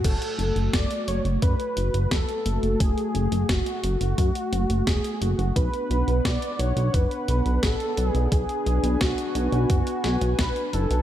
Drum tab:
CC |x---------------|----------------|----------------|----------------|
HH |xxxxxxxxxxxxxxxx|xxxxxxxxxxxxxxxx|xxxxxxxxxxxxxxxx|xxxxxxxxxxxxxxxx|
SD |----o-------o---|----o-------o---|----o-------o---|----o-----o-o---|
BD |o---o---o---o---|o---o---o---o---|o---o---o---o---|o---o---o---o---|